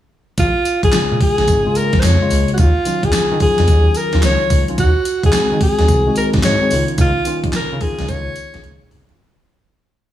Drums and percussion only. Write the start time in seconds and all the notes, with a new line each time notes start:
0.38 kick, closed hi-hat, tambourine
0.65 closed hi-hat, tambourine
0.83 kick, closed hi-hat
0.92 snare, clap, closed hi-hat, tambourine
1.21 kick, open hi-hat
1.38 snare, closed hi-hat
1.48 kick, closed hi-hat, tambourine
1.75 closed hi-hat, tambourine
1.93 kick, snare, closed hi-hat
2.03 snare, clap, closed hi-hat, tambourine
2.30 open hi-hat, tambourine
2.48 closed hi-hat
2.58 kick, closed hi-hat, tambourine
2.85 closed hi-hat, tambourine
3.03 kick, closed hi-hat
3.13 snare, clap, closed hi-hat, tambourine
3.40 kick, open hi-hat
3.58 snare, closed hi-hat
3.68 kick, closed hi-hat, tambourine
3.94 closed hi-hat, tambourine
4.13 snare, closed hi-hat
4.23 snare, clap, closed hi-hat, tambourine
4.50 kick, open hi-hat, tambourine
4.68 closed hi-hat
4.78 kick, closed hi-hat, tambourine
5.05 closed hi-hat, tambourine
5.24 kick, closed hi-hat
5.33 snare, clap, closed hi-hat, tambourine
5.61 kick, open hi-hat
5.79 snare, closed hi-hat
5.88 kick, closed hi-hat, tambourine
6.16 closed hi-hat, tambourine
6.33 kick, snare, closed hi-hat
6.43 snare, clap, closed hi-hat, tambourine
6.70 open hi-hat, tambourine
6.88 closed hi-hat
6.98 kick, closed hi-hat, tambourine
7.25 closed hi-hat, tambourine
7.44 kick, closed hi-hat
7.53 snare, clap, closed hi-hat, tambourine
7.81 kick, open hi-hat
7.99 snare, closed hi-hat
8.08 kick, closed hi-hat, tambourine
8.36 closed hi-hat, tambourine
8.54 snare, closed hi-hat
8.64 closed hi-hat, high tom
8.82 mid tom
8.91 mid tom, open hi-hat
9.09 closed hi-hat, floor tom